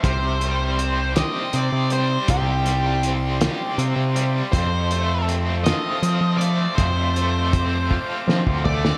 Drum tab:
HH |x-x-x-x-x-x-|x-x-x-x-x-x-|x-x-x-x-x-x-|x-x-x-------|
SD |------o-----|------o-----|------o-----|--------o--o|
FT |------------|------------|------------|----------o-|
BD |o-----------|o-----------|o-----------|o---o-o--o--|